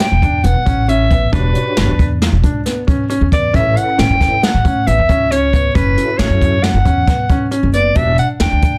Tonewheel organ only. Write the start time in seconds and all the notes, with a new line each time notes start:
1.32 D4 F#4 G4 C#5
3.53 C#4 E4 A4 B4
4.20 C#4 E4 A4 B4
5.97 C#4 E4 F#4 A4
6.62 C#4 E4 F#4 A4
7.95 B3 D4 F#4 G4